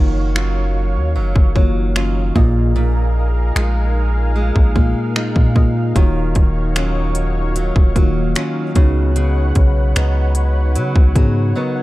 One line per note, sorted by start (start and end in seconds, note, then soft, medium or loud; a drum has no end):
0.00 0.98 F#1 loud
0.00 0.96 D#3 medium
0.00 3.06 D#3 medium
0.00 0.35 F#3 medium
0.00 2.33 F#3 medium
0.00 0.96 A#3 medium
0.00 0.36 D#4 medium
0.00 11.83 D#4 medium
0.00 0.96 F4 medium
0.00 0.96 F#4 medium
0.00 0.97 C#5 medium
0.00 2.33 C#5 medium
0.00 8.72 F5 medium
0.36 1.14 F#3 medium
0.36 1.95 C#4 medium
0.36 1.96 F4 medium
0.36 finger snap loud
0.96 1.18 D#2 medium
1.16 1.35 F#1 loud
1.16 1.55 F#3 medium
1.36 2.32 F#1 medium
1.36 kick medium
1.55 2.26 D#3 medium
1.55 1.94 F#3 medium
1.55 2.26 A#3 medium
1.55 2.26 F4 medium
1.55 2.26 F#4 medium
1.55 2.26 C#5 medium
1.55 kick medium
1.96 2.44 F#3 medium
1.96 2.44 C#4 medium
1.96 3.57 F4 medium
1.96 finger snap loud
2.35 3.52 A#1 loud
2.35 3.76 A#2 medium
2.35 2.74 A#2 medium
2.35 3.76 A#3 medium
2.35 3.76 F4 medium
2.35 5.92 G#4 medium
2.35 3.77 G#4 medium
2.35 5.92 A#4 medium
2.35 3.77 D#5 loud
2.35 kick loud
2.76 5.96 A#2 medium
3.56 4.52 A#1 loud
3.56 4.34 G#3 medium
3.56 5.16 D#4 medium
3.56 5.16 F4 medium
3.56 finger snap loud
4.36 4.75 G#3 medium
4.56 4.94 A#1 medium
4.56 kick medium
4.75 5.46 A#2 medium
4.75 5.14 G#3 medium
4.75 5.46 A#3 medium
4.75 5.46 F4 medium
4.75 5.46 G#4 medium
4.75 5.46 F5 medium
4.75 kick medium
5.16 6.04 G#3 medium
5.16 6.76 D#4 medium
5.16 6.77 F4 medium
5.16 finger snap loud
5.36 5.93 A#2 medium
5.36 kick medium
5.55 5.90 A#2 medium
5.55 5.91 A#3 medium
5.55 5.91 F4 medium
5.55 5.91 G#4 medium
5.55 5.91 D#5 medium
5.55 kick medium
5.95 6.34 D#1 loud
5.95 7.36 D#3 medium
5.95 8.75 D#3 medium
5.95 8.73 F#3 medium
5.95 7.36 A#3 medium
5.95 7.36 F4 medium
5.95 7.36 F#4 medium
5.95 8.73 C#5 medium
5.95 7.37 C#5 medium
5.95 kick loud
5.95 closed hi-hat medium
6.35 7.72 D#1 medium
6.35 kick medium
6.35 closed hi-hat medium
6.76 7.55 F#3 medium
6.76 8.36 C#4 medium
6.76 8.36 F4 medium
6.76 finger snap loud
6.76 closed hi-hat medium
7.15 closed hi-hat medium
7.56 7.95 F#3 medium
7.56 closed hi-hat medium
7.76 7.95 D#1 medium
7.76 kick loud
7.95 8.34 D#1 medium
7.95 8.66 D#3 medium
7.95 8.35 F#3 medium
7.95 8.66 A#3 medium
7.95 8.66 F4 medium
7.95 8.66 F#4 medium
7.95 8.66 C#5 medium
7.95 kick medium
7.95 closed hi-hat medium
8.36 9.95 F#3 medium
8.36 9.96 C#4 medium
8.36 8.84 F4 medium
8.36 finger snap loud
8.36 closed hi-hat medium
8.75 9.53 C#2 medium
8.75 10.16 C#3 medium
8.75 9.15 C#3 medium
8.75 10.16 B3 medium
8.75 10.16 D#4 medium
8.75 10.16 F#4 medium
8.75 11.83 B4 medium
8.75 11.83 C#5 medium
8.75 10.17 C#5 loud
8.75 11.83 F#5 medium
8.75 kick medium
8.75 closed hi-hat medium
9.16 11.83 C#3 medium
9.16 closed hi-hat medium
9.55 9.94 B1 loud
9.55 kick medium
9.55 closed hi-hat medium
9.96 10.78 C#2 loud
9.96 10.75 F#3 medium
9.96 11.55 B3 medium
9.96 11.56 D#4 medium
9.96 finger snap loud
9.96 closed hi-hat medium
10.35 closed hi-hat medium
10.76 10.95 C#3 medium
10.76 11.15 F#3 medium
10.76 closed hi-hat medium
10.96 11.15 C#2 medium
10.96 kick loud
11.15 11.54 G#2 loud
11.15 11.83 C#3 medium
11.15 11.55 F#3 medium
11.15 11.83 B3 medium
11.15 11.83 D#4 medium
11.15 11.83 F#4 medium
11.15 11.83 G#4 medium
11.15 kick medium
11.15 closed hi-hat medium
11.56 11.83 F#3 medium
11.56 11.83 B3 medium
11.56 11.83 D#4 medium
11.56 11.75 A#4 medium
11.56 11.75 D#5 medium
11.76 11.83 C#5 medium
11.76 11.83 F#5 medium